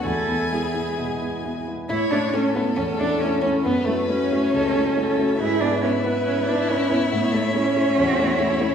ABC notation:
X:1
M:4/4
L:1/8
Q:1/4=138
K:A
V:1 name="Violin"
g6- g z | c2 A6 | B4 A2 A2 | G2 E6- |
E4 F2 E2 |]
V:2 name="Grand piano"
E,, [B,E] [B,E] [B,E] B,, [B,E] [B,E] [B,E] | A,, [A,CE] [A,CE] [A,CE] E,, [A,CE] [A,CE] [A,CE] | F,, [A,EF] [A,EF] [A,EF] C,, [A,EF] [A,EF] [A,EF] | G,, [B,EB] [B,EB] [B,EB] G,, [B,EB] [B,EB] [B,EB] |
A,, [A,Ec] [A,Ec] [A,Ec] E,, [A,Ec] [A,Ec] [A,Ec] |]
V:3 name="Cello"
A,2 G,4- G, z | E D C B, C D C C | B, A, C6 | E D C B, C D C C |
B, A, C6 |]
V:4 name="Viola"
A2 G4- G z | E D C B, C D C C | B, A, C6 | B8 |
c8 |]
V:5 name="Violin"
E6- E z | E D C B, C D C C | B, A, C6 | e8- |
e8 |]